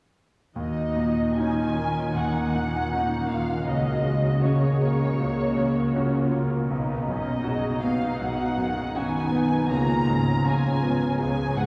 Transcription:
0.56 2.11 D#2 soft
0.56 3.70 D#3 soft
0.56 3.63 D#3 soft
0.56 1.35 D#4 soft
0.56 1.34 F#4 soft
0.56 1.34 D#5 soft
0.96 1.61 A#2 soft
0.96 2.52 C#4 soft
1.38 1.74 C#4 soft
1.38 2.15 C#4 soft
1.38 1.74 D#4 soft
1.38 2.16 F4 soft
1.38 2.90 A#4 soft
1.38 2.15 G#5 medium
1.77 2.39 A#3 soft
1.77 3.28 D#5 soft
2.14 3.63 D#2 soft
2.14 5.18 A#3 soft
2.14 2.90 A#3 soft
2.14 2.91 D#4 soft
2.14 3.30 F#5 soft
2.54 3.14 A#2 soft
2.54 4.04 C#4 soft
2.91 3.66 A#3 soft
2.91 3.26 C#4 soft
2.91 3.29 D#4 soft
2.91 3.26 D#4 soft
2.91 4.41 A#4 soft
3.29 3.67 A#3 soft
3.29 3.67 F4 soft
3.29 3.70 D#5 soft
3.29 3.67 F5 soft
3.67 5.15 C#2 soft
3.67 6.67 C#3 soft
3.67 6.74 C#3 soft
3.67 4.05 C#4 soft
3.67 4.43 F#4 soft
3.67 4.42 D#5 soft
4.04 4.66 C#3 soft
4.04 4.43 G#3 soft
4.04 5.55 C#4 soft
4.42 6.71 A#3 soft
4.42 4.78 C#4 soft
4.42 4.78 F#4 soft
4.42 5.19 G#4 soft
4.42 5.93 A#4 soft
4.42 6.32 C#5 soft
4.81 5.42 A#3 soft
4.81 8.71 A#5 soft
5.19 6.67 C#2 soft
5.19 6.74 A#3 soft
5.19 5.93 F#4 soft
5.56 6.18 C#3 soft
5.56 9.46 C#4 soft
5.94 6.30 C#4 soft
5.94 6.71 F4 soft
5.94 6.30 F#4 soft
5.94 6.74 A#4 soft
6.32 6.70 A#3 soft
6.70 8.17 B1 soft
6.70 9.73 B2 soft
6.70 8.92 B2 soft
6.70 7.08 B3 soft
6.70 7.45 D#4 soft
7.07 7.68 F#2 soft
7.07 8.57 B3 soft
7.07 7.46 C#4 soft
7.07 7.80 D#5 soft
7.44 7.79 C#4 soft
7.44 8.95 D#4 soft
7.44 7.79 F#4 soft
7.44 8.94 F#4 soft
7.44 7.84 G#4 soft
7.82 8.43 B3 soft
7.82 8.97 F#4 soft
7.82 9.31 C#5 soft
7.82 8.21 F5 soft
8.20 9.66 B1 soft
8.20 9.73 F#3 soft
8.20 8.94 F#5 medium
8.57 9.17 F#2 soft
8.57 10.05 B3 soft
8.95 9.69 D#3 soft
8.95 9.70 B3 soft
8.95 9.29 C#4 soft
8.95 9.70 D#4 soft
8.95 9.73 F#4 soft
8.95 9.29 F#4 soft
8.95 9.71 G#5 medium
9.32 9.69 B3 soft
9.32 10.81 C#5 soft
9.69 11.15 C#2 soft
9.69 11.66 C#3 soft
9.69 10.07 A#3 soft
9.69 10.44 F4 soft
9.69 10.46 A#5 medium
10.07 10.67 G#2 soft
10.07 10.45 G#3 soft
10.07 11.56 B3 soft
10.44 11.66 F3 soft
10.44 11.66 G#3 soft
10.44 10.78 C#4 soft
10.44 10.79 F4 soft
10.44 11.19 F4 soft
10.44 11.19 G#5 medium
10.82 11.42 B3 soft
10.82 11.66 C#5 soft
11.20 11.66 C#2 soft
11.20 11.66 G#3 soft
11.20 11.66 G#4 soft
11.20 11.56 G#5 medium
11.55 11.66 G#2 soft
11.55 11.66 B3 soft
11.55 11.66 F#5 medium

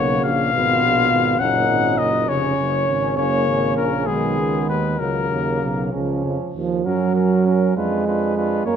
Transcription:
0.00 0.23 B1 medium
0.00 0.54 C#3 soft
0.00 0.49 A#3 soft
0.00 0.36 F#4 soft
0.00 0.20 C#5 medium
0.24 0.52 A#1 soft
0.24 1.40 F5 medium
0.53 0.84 G#1 soft
0.53 1.39 B2 medium
0.53 1.42 B3 soft
0.53 1.39 F4 medium
0.83 1.11 A#1 soft
1.12 1.39 G#1 soft
1.39 1.69 F#1 soft
1.39 2.29 A#2 soft
1.39 2.11 C#4 soft
1.39 2.30 D#4 soft
1.39 2.00 F#5 medium
1.69 1.98 G#1 soft
1.98 2.30 F#1 soft
1.98 2.30 D#5 medium
2.28 2.58 F1 soft
2.28 3.16 C#3 soft
2.28 4.09 C#4 medium
2.28 3.19 C#4 soft
2.28 3.17 C#5 medium
2.58 2.87 F#1 soft
2.88 3.17 G#1 soft
3.17 3.49 F#1 soft
3.17 4.08 C#3 soft
3.17 4.09 A#3 soft
3.17 3.76 C#5 medium
3.48 3.79 G#1 soft
3.77 4.10 A#1 soft
3.77 4.08 A#4 medium
4.06 4.40 B1 soft
4.06 4.99 D#3 soft
4.06 5.01 G#3 soft
4.06 4.99 B3 soft
4.06 4.68 G#4 medium
4.38 4.68 C#2 soft
4.69 4.99 D#2 soft
4.69 5.01 B4 soft
4.99 5.29 C#2 soft
4.99 5.91 C#3 soft
4.99 5.92 F#3 soft
4.99 5.93 A#3 soft
4.99 5.93 A#4 medium
5.31 5.61 D#2 soft
5.62 5.92 B1 soft
5.92 6.24 C#2 soft
5.92 6.37 C#3 soft
5.92 6.54 F3 soft
5.92 6.54 C#4 soft
6.25 6.39 F2 soft
6.54 6.85 D#2 soft
6.54 6.86 F3 soft
6.85 7.67 F#2 soft
6.85 7.76 F#3 medium
6.85 7.15 C#4 soft
6.85 7.16 C#4 soft
6.85 7.15 A#4 soft
7.15 7.46 C#4 soft
7.15 7.47 C#4 soft
7.15 7.46 A#4 soft
7.46 7.75 C#4 soft
7.46 7.77 C#4 soft
7.46 7.76 A#4 soft
7.76 8.56 F2 soft
7.76 8.64 G#3 medium
7.76 8.07 D4 soft
7.76 8.06 F4 soft
7.76 8.06 B4 soft
8.07 8.35 D4 soft
8.07 8.36 F4 soft
8.07 8.36 B4 soft
8.36 8.65 D4 soft
8.36 8.66 F4 soft
8.36 8.65 B4 soft
8.66 8.76 F#2 soft
8.66 8.76 A#3 medium
8.66 8.76 C#4 soft
8.66 8.76 A#4 soft
8.66 8.76 C#5 soft

